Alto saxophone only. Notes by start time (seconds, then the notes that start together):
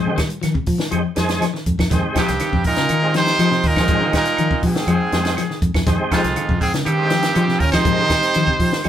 2.19 C4
2.67 D#4
3.17 D#4
3.68 D#4
4.17 D#4
4.67 C4
6.13 G#3
6.62 C4
6.87 C4
7.62 C#4
7.75 D#4